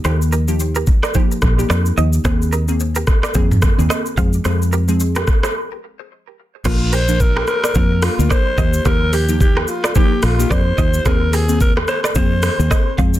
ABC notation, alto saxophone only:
X:1
M:4/4
L:1/16
Q:"Swing 16ths" 1/4=109
K:Bbmix
V:1 name="Alto saxophone"
z16 | z16 | z16 | F2 c2 B2 B4 F2 c4 |
B2 G2 G3/2 G/2 F2 G2 F2 c4 | B2 A2 B2 c2 c6 z2 |]